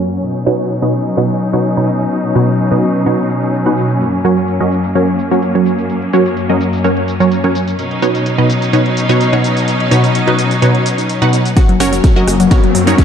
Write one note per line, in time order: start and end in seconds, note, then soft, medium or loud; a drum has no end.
0.00 0.19 F#2 medium
0.00 7.75 F#3 medium
0.00 0.19 A#3 medium
0.00 7.75 C#4 medium
0.12 closed hi-hat medium
0.12 cabasa soft
0.23 3.97 B2 medium
0.23 3.97 D#4 medium
0.23 closed hi-hat medium
0.23 cabasa soft
0.35 closed hi-hat soft
0.46 0.79 B2 medium
0.46 0.79 D#4 medium
0.46 0.79 F#4 medium
0.46 0.79 B4 medium
0.46 0.79 C#5 loud
0.46 closed hi-hat medium
0.46 cabasa medium
0.59 closed hi-hat soft
0.59 cabasa soft
0.70 closed hi-hat medium
0.70 cabasa soft
0.82 0.89 B2 medium
0.82 0.89 D#4 medium
0.82 0.89 F#4 medium
0.82 0.89 B4 medium
0.82 0.89 D#5 medium
0.94 closed hi-hat medium
0.94 cabasa medium
1.06 closed hi-hat soft
1.06 cabasa soft
1.17 1.25 B2 medium
1.17 1.25 D#4 medium
1.17 1.25 F#4 medium
1.17 1.25 B4 medium
1.17 1.25 C#5 medium
1.17 closed hi-hat medium
1.17 cabasa soft
1.30 closed hi-hat soft
1.41 closed hi-hat medium
1.41 cabasa medium
1.53 1.60 B2 medium
1.53 1.60 D#4 medium
1.53 1.60 F#4 medium
1.53 1.60 B4 medium
1.53 1.60 C#5 medium
1.53 closed hi-hat soft
1.53 cabasa soft
1.64 closed hi-hat medium
1.64 cabasa soft
1.77 1.88 B2 medium
1.77 1.88 D#4 medium
1.77 1.88 F#4 medium
1.77 1.88 B4 medium
1.77 1.88 C#5 medium
1.77 closed hi-hat soft
1.88 closed hi-hat medium
1.88 cabasa medium
2.00 closed hi-hat soft
2.00 cabasa soft
2.12 closed hi-hat medium
2.12 cabasa soft
2.24 closed hi-hat soft
2.35 2.68 B2 medium
2.35 2.68 D#4 medium
2.35 2.68 F#4 medium
2.35 2.68 B4 medium
2.35 2.68 C#5 loud
2.35 closed hi-hat medium
2.35 cabasa medium
2.48 closed hi-hat soft
2.48 cabasa soft
2.59 closed hi-hat medium
2.59 cabasa soft
2.71 2.78 B2 medium
2.71 2.78 D#4 medium
2.71 2.78 F#4 medium
2.71 2.78 B4 medium
2.71 2.78 D#5 medium
2.83 closed hi-hat medium
2.83 cabasa medium
2.95 closed hi-hat soft
2.95 cabasa soft
3.06 3.14 B2 medium
3.06 3.14 D#4 medium
3.06 3.14 F#4 medium
3.06 3.14 B4 medium
3.06 3.14 C#5 medium
3.06 closed hi-hat medium
3.06 cabasa soft
3.19 closed hi-hat soft
3.30 closed hi-hat medium
3.30 cabasa medium
3.42 closed hi-hat soft
3.42 cabasa soft
3.54 closed hi-hat medium
3.54 cabasa soft
3.66 3.99 B2 medium
3.66 3.99 D#4 medium
3.66 3.99 F#4 medium
3.66 3.99 B4 medium
3.66 3.99 F#5 medium
3.66 closed hi-hat soft
3.77 closed hi-hat medium
3.77 cabasa medium
3.90 closed hi-hat soft
3.90 cabasa soft
4.01 7.75 F#2 medium
4.01 7.75 A#3 medium
4.01 closed hi-hat medium
4.01 cabasa soft
4.13 closed hi-hat soft
4.24 4.57 F#3 medium
4.24 4.57 C#4 medium
4.24 4.57 F#4 medium
4.24 4.57 A#4 medium
4.24 4.57 C#5 loud
4.24 closed hi-hat medium
4.24 cabasa medium
4.37 closed hi-hat soft
4.37 cabasa soft
4.48 closed hi-hat medium
4.48 cabasa soft
4.60 4.67 F#3 medium
4.60 4.67 C#4 medium
4.60 4.67 F#4 medium
4.60 4.67 A#4 medium
4.60 4.67 D#5 medium
4.72 closed hi-hat medium
4.72 cabasa medium
4.84 closed hi-hat soft
4.84 cabasa soft
4.95 5.03 F#3 medium
4.95 5.03 C#4 medium
4.95 5.03 F#4 medium
4.95 5.03 A#4 medium
4.95 5.03 C#5 medium
4.95 closed hi-hat medium
4.95 cabasa soft
5.08 closed hi-hat soft
5.19 closed hi-hat medium
5.19 cabasa medium
5.31 5.38 F#3 medium
5.31 5.38 C#4 medium
5.31 5.38 F#4 medium
5.31 5.38 A#4 medium
5.31 5.38 C#5 medium
5.31 closed hi-hat soft
5.31 cabasa soft
5.42 closed hi-hat medium
5.42 cabasa soft
5.55 5.66 F#3 medium
5.55 5.66 C#4 medium
5.55 5.66 F#4 medium
5.55 5.66 A#4 medium
5.55 5.66 C#5 medium
5.55 closed hi-hat soft
5.66 closed hi-hat medium
5.66 cabasa medium
5.79 closed hi-hat soft
5.79 cabasa soft
5.90 closed hi-hat medium
5.90 cabasa soft
6.02 closed hi-hat soft
6.13 6.46 F#3 medium
6.13 6.46 C#4 medium
6.13 6.46 F#4 medium
6.13 6.46 A#4 medium
6.13 6.46 C#5 loud
6.13 closed hi-hat medium
6.13 cabasa medium
6.26 closed hi-hat soft
6.26 cabasa soft
6.37 closed hi-hat medium
6.37 cabasa soft
6.49 6.56 F#3 medium
6.49 6.56 C#4 medium
6.49 6.56 F#4 medium
6.49 6.56 A#4 medium
6.49 6.56 D#5 medium
6.61 closed hi-hat medium
6.61 cabasa medium
6.73 closed hi-hat soft
6.73 cabasa soft
6.84 6.92 F#3 medium
6.84 6.92 C#4 medium
6.84 6.92 F#4 medium
6.84 6.92 A#4 medium
6.84 6.92 C#5 medium
6.84 closed hi-hat medium
6.84 cabasa soft
6.97 closed hi-hat soft
7.08 closed hi-hat medium
7.08 cabasa medium
7.20 7.27 F#3 medium
7.20 7.27 C#4 medium
7.20 7.27 F#4 medium
7.20 7.27 A#4 medium
7.20 7.27 C#5 medium
7.20 closed hi-hat soft
7.20 cabasa soft
7.32 closed hi-hat medium
7.32 cabasa soft
7.44 7.55 F#3 medium
7.44 7.55 C#4 medium
7.44 7.55 F#4 medium
7.44 7.55 A#4 medium
7.44 7.55 C#5 medium
7.44 closed hi-hat soft
7.55 closed hi-hat medium
7.55 cabasa medium
7.68 closed hi-hat soft
7.68 cabasa soft
7.79 11.53 B2 medium
7.79 11.53 F#3 medium
7.79 11.53 C#4 medium
7.79 11.53 D#4 medium
7.79 closed hi-hat medium
7.79 cabasa soft
7.91 closed hi-hat soft
8.02 8.35 B2 medium
8.02 8.35 D#4 medium
8.02 8.35 F#4 medium
8.02 8.35 B4 medium
8.02 8.35 C#5 loud
8.02 closed hi-hat medium
8.02 cabasa medium
8.15 closed hi-hat medium
8.15 cabasa soft
8.26 closed hi-hat medium
8.26 cabasa soft
8.38 8.45 B2 medium
8.38 8.45 D#4 medium
8.38 8.45 F#4 medium
8.38 8.45 B4 medium
8.38 8.45 D#5 medium
8.50 closed hi-hat medium
8.50 cabasa medium
8.62 closed hi-hat medium
8.62 cabasa soft
8.73 8.81 B2 medium
8.73 8.81 D#4 medium
8.73 8.81 F#4 medium
8.73 8.81 B4 medium
8.73 8.81 C#5 medium
8.73 closed hi-hat medium
8.73 cabasa soft
8.86 closed hi-hat soft
8.97 closed hi-hat medium
8.97 cabasa medium
9.09 9.16 B2 medium
9.09 9.16 D#4 medium
9.09 9.16 F#4 medium
9.09 9.16 B4 medium
9.09 9.16 C#5 medium
9.09 closed hi-hat medium
9.09 cabasa soft
9.21 closed hi-hat medium
9.21 cabasa soft
9.33 9.43 B2 medium
9.33 9.43 D#4 medium
9.33 9.43 F#4 medium
9.33 9.43 B4 medium
9.33 9.43 C#5 medium
9.33 closed hi-hat soft
9.44 closed hi-hat medium
9.44 cabasa medium
9.57 closed hi-hat medium
9.57 cabasa soft
9.68 closed hi-hat medium
9.68 cabasa soft
9.80 closed hi-hat soft
9.91 10.24 B2 medium
9.91 10.24 D#4 medium
9.91 10.24 F#4 medium
9.91 10.24 B4 medium
9.91 10.24 C#5 loud
9.91 closed hi-hat medium
9.91 cabasa medium
10.04 closed hi-hat medium
10.04 cabasa soft
10.15 closed hi-hat medium
10.15 cabasa soft
10.27 10.34 B2 medium
10.27 10.34 D#4 medium
10.27 10.34 F#4 medium
10.27 10.34 B4 medium
10.27 10.34 D#5 medium
10.27 closed hi-hat soft
10.39 closed hi-hat medium
10.39 cabasa medium
10.51 closed hi-hat medium
10.51 cabasa soft
10.62 10.70 B2 medium
10.62 10.70 D#4 medium
10.62 10.70 F#4 medium
10.62 10.70 B4 medium
10.62 10.70 C#5 medium
10.62 closed hi-hat medium
10.62 cabasa soft
10.75 closed hi-hat soft
10.86 closed hi-hat medium
10.86 cabasa medium
10.98 closed hi-hat medium
10.98 cabasa soft
11.09 closed hi-hat medium
11.09 cabasa soft
11.22 11.55 B2 medium
11.22 11.55 D#4 medium
11.22 11.55 F#4 medium
11.22 11.55 B4 medium
11.22 11.55 F#5 medium
11.22 closed hi-hat soft
11.33 closed hi-hat medium
11.33 cabasa medium
11.45 closed hi-hat medium
11.45 cabasa soft
11.57 13.04 F#3 medium
11.57 13.04 A#3 medium
11.57 13.04 C#4 medium
11.57 11.65 F#4 loud
11.57 kick loud
11.57 snare soft
11.57 closed hi-hat medium
11.57 riser medium
11.57 cabasa soft
11.69 11.77 F#3 medium
11.69 closed hi-hat soft
11.80 12.00 F#1 loud
11.80 12.13 F#3 medium
11.80 12.13 C#4 medium
11.80 11.89 F#4 medium
11.80 12.13 F#4 medium
11.80 12.13 A#4 medium
11.80 12.13 C#5 loud
11.80 cross-stick medium
11.80 open hi-hat loud
11.80 cabasa medium
11.93 12.00 F#3 medium
11.93 closed hi-hat medium
11.93 cabasa soft
12.04 12.12 F#3 medium
12.04 kick loud
12.04 snare medium
12.04 closed hi-hat medium
12.04 cabasa soft
12.16 12.23 F#3 medium
12.16 12.23 C#4 medium
12.16 12.24 F#4 medium
12.16 12.23 F#4 medium
12.16 12.23 A#4 medium
12.16 12.23 D#5 medium
12.27 12.48 F#1 loud
12.27 12.36 F#3 medium
12.27 cross-stick medium
12.27 open hi-hat loud
12.27 cabasa medium
12.40 12.47 F#3 medium
12.40 closed hi-hat medium
12.40 cabasa soft
12.51 12.58 F#3 medium
12.51 12.58 C#4 medium
12.51 12.59 F#4 medium
12.51 12.58 F#4 medium
12.51 12.58 A#4 medium
12.51 12.58 C#5 medium
12.51 kick loud
12.51 snare medium
12.51 closed hi-hat medium
12.51 cabasa soft
12.64 12.71 F#3 medium
12.64 closed hi-hat soft
12.75 12.95 F#2 loud
12.75 12.83 F#3 medium
12.75 open hi-hat loud
12.75 cabasa medium
12.87 12.94 F#3 medium
12.87 12.94 C#4 medium
12.87 12.95 D#4 medium
12.87 12.94 F#4 medium
12.87 12.94 A#4 medium
12.87 12.94 C#5 medium
12.87 closed hi-hat medium
12.87 cabasa soft
12.98 13.04 F#3 medium
12.98 kick loud
12.98 snare medium
12.98 closed hi-hat medium
12.98 cabasa soft